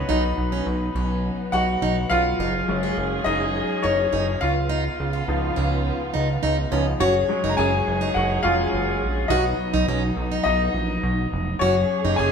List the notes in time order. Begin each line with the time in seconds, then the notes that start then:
Already playing: F3 B3 C#4 D#4 B4 C#5 D#5
0.09 B1 F#3 B3 D#4
0.38 B1
0.52 C#4
0.66 B1
0.95 B1 C#4
1.52 B1 D#4 F#4 F#5
1.82 B1 D#4
2.10 B1 C#4 F4 F5
2.39 F#1 C#4 D#4 G#4
2.68 F#1 F#3 G#3 C#4
2.83 C#4
2.98 F#1
3.24 F#1 C#4 D#4 D#5
3.82 F#1 C#4 D#4 C#5
4.12 F#1 D#4
4.40 C#2 C#3 B3 C#4 F4 F5
4.69 D#4
5.00 C#2
5.13 C#4
5.28 C#2 F3 B3 D#4
5.56 C#2 C#4
6.14 C#2 D#4
6.43 C#2 D#4
6.71 C#2 F3 B3 C#4 D#4
7.00 F#1 F#3 C#4 F#4 G#4 C#5
7.28 F#3 G#3 C#4
7.44 F#1 D#4
7.49 A#5
7.57 F#1 C#4 G#4 G#5
7.87 F#1
8.01 D#4
8.14 F#1 F#4 F#5
8.43 F1 F#3 G#3 C#4 F4 F5
8.73 F#1
9.02 A#1
9.28 B1 F#3 B3 D#4 F#4 D#5
9.74 B1 D#4
9.88 B1 C#4
10.17 B1
10.32 D#4
10.44 B1 D#4 D#5
10.74 A#1
11.03 B1
11.32 F1
11.59 F#1 C#4 F#4 G#4 C#5
12.04 F#1 D#4
12.16 F#1 C#4 G#4 G#5